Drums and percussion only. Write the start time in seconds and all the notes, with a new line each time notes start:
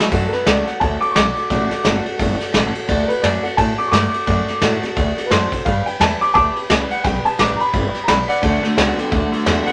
0.00 snare
0.12 kick, crash
0.33 snare, ride
0.47 snare, ride
0.67 snare, ride
0.81 kick, ride
1.02 ride
1.16 snare, ride
1.36 ride
1.50 kick, snare, ride
1.71 snare, ride
1.85 snare, ride
2.06 ride
2.19 kick, ride
2.41 snare, ride
2.54 snare, ride
2.75 ride
2.89 kick, ride
3.10 ride
3.24 snare, ride
3.44 ride
3.58 kick, ride
3.79 ride
3.93 snare, ride
4.14 ride
4.27 kick, snare, ride
4.48 snare, ride
4.62 snare, ride
4.83 snare, ride
4.97 kick, ride
5.18 snare, ride
5.31 snare, ride
5.52 kick, ride
5.66 kick, ride
5.87 ride
6.01 snare, ride
6.21 ride
6.35 kick, ride
6.56 ride
6.70 snare, ride
6.91 ride
7.05 kick, snare, ride
7.26 ride
7.39 snare, ride
7.60 ride
7.73 kick, ride
7.94 snare, ride
8.08 snare, ride
8.29 ride
8.43 kick, ride
8.64 snare, ride
8.78 snare, ride
8.98 snare, ride
9.12 kick, ride
9.33 ride
9.46 snare, ride
9.67 ride